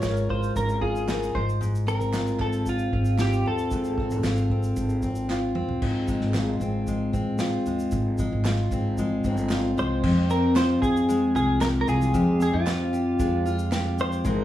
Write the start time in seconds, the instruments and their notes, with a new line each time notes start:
Already playing: steel-string acoustic guitar G#3 C#4 F4, clean electric guitar C#5
0.02 upright bass G#1, steel-string acoustic guitar A#4, snare, clap, shaker
0.17 shaker
0.29 steel-string acoustic guitar F4, clean electric guitar C5, kick
0.43 shaker
0.56 upright bass G#1, steel-string acoustic guitar C#4, clean electric guitar A#4, kick, shaker
0.69 shaker
0.81 steel-string acoustic guitar F4, clean electric guitar G#4, kick
0.96 shaker
1.08 steel-string acoustic guitar A#4, snare, clap, shaker
1.23 shaker
1.35 upright bass G#1, steel-string acoustic guitar G#2, clean electric guitar C5, kick
1.49 shaker
1.61 steel-string acoustic guitar G#2, shaker
1.75 shaker
1.86 steel-string acoustic guitar C4, clean electric guitar A#4, shaker
2.00 upright bass A1, shaker
2.13 steel-string acoustic guitar F4, snare, clap, shaker
2.27 shaker
2.40 upright bass G#1, steel-string acoustic guitar C4, clean electric guitar A4, kick, clap
2.53 shaker
2.66 clean electric guitar F4, kick, shaker
2.79 shaker
2.93 upright bass G#1, steel-string acoustic guitar C4, kick
3.05 shaker
3.18 steel-string acoustic guitar F4, clean electric guitar G4, snare, clap, shaker
3.33 shaker
3.45 upright bass D#2, steel-string acoustic guitar C4, clean electric guitar A4
3.58 shaker
3.71 upright bass G#1, steel-string acoustic guitar G#2, kick, shaker
3.84 shaker
3.98 steel-string acoustic guitar C4, kick
4.11 upright bass G#1, shaker
4.23 upright bass G#1, steel-string acoustic guitar F4, snare, clap, shaker
4.37 shaker
4.50 steel-string acoustic guitar C4, kick
4.63 shaker
4.76 upright bass G#1, kick, shaker
4.89 shaker
5.02 steel-string acoustic guitar C4, kick, shaker
5.15 shaker
5.29 steel-string acoustic guitar F4, snare, clap
5.55 upright bass D#2, steel-string acoustic guitar C4, mid tom
5.69 floor tom
5.82 upright bass G#1, steel-string acoustic guitar G#2, kick, crash
6.08 steel-string acoustic guitar G#3, kick, shaker
6.21 upright bass G#1, snare
6.34 steel-string acoustic guitar F4, snare, clap, shaker
6.60 upright bass G#1, steel-string acoustic guitar C4, shaker
6.87 steel-string acoustic guitar G#3, kick, shaker
7.13 upright bass A1, steel-string acoustic guitar C4, kick, shaker
7.39 steel-string acoustic guitar F4, snare, clap, shaker
7.66 upright bass D#2, steel-string acoustic guitar G#3, shaker
7.79 shaker
7.91 upright bass G#1, kick, shaker
8.18 steel-string acoustic guitar G#3, kick, shaker
8.32 upright bass G#1
8.45 steel-string acoustic guitar F4, snare, clap, shaker
8.71 upright bass G#1, steel-string acoustic guitar C4, kick, shaker
8.98 steel-string acoustic guitar G#3, kick, shaker
9.24 upright bass G1, steel-string acoustic guitar C4, kick, shaker
9.37 shaker
9.50 steel-string acoustic guitar F4, snare, clap, shaker
9.77 upright bass C2, steel-string acoustic guitar G#3, clean electric guitar C5, shaker
10.03 upright bass F2, steel-string acoustic guitar F2 G4, kick, crash
10.30 steel-string acoustic guitar C4, clean electric guitar A#4, shaker
10.55 steel-string acoustic guitar F4, clean electric guitar C5, snare, clap, shaker
10.82 upright bass F2, clean electric guitar G#4, kick, shaker
10.97 shaker
11.09 steel-string acoustic guitar G#3, shaker
11.35 upright bass C2, steel-string acoustic guitar F4, clean electric guitar G#4, shaker
11.61 steel-string acoustic guitar G4, clean electric guitar A#4, snare, clap, shaker
11.81 clean electric guitar A#4
11.87 upright bass C2, steel-string acoustic guitar F4, clean electric guitar G#4, shaker
12.01 shaker
12.14 upright bass F2, steel-string acoustic guitar F2 G4, kick, shaker
12.40 steel-string acoustic guitar C4, clean electric guitar G#4, shaker
12.53 upright bass F2, clean electric guitar F4
12.66 steel-string acoustic guitar F4, snare, clap, shaker
12.93 steel-string acoustic guitar G4, shaker
13.19 upright bass F2, steel-string acoustic guitar G#3, kick, shaker
13.46 steel-string acoustic guitar F4, shaker
13.59 shaker
13.72 steel-string acoustic guitar G4, snare, clap, shaker
13.99 steel-string acoustic guitar F4, clean electric guitar C5, shaker
14.12 shaker
14.24 upright bass G#1, steel-string acoustic guitar G#3 A#4, kick, shaker